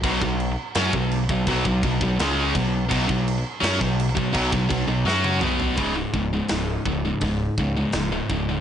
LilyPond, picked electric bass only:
\new Staff \with { instrumentName = "Picked electric bass" } { \clef bass \time 4/4 \key b \mixolydian \tempo 4 = 84 b,,16 b,,8 r16 fis,16 b,,8 b,,16 b,,16 b,,16 b,,16 b,,16 cis,8 b,,8 | b,,16 b,,8 r16 fis,16 b,,8 b,,16 b,,16 b,,16 b,,16 b,,16 fis,8 b,,8 | cis,,8 cis,,8 cis,,8 cis,,8 cis,,8 cis,8 cis,,8 cis,,8 | }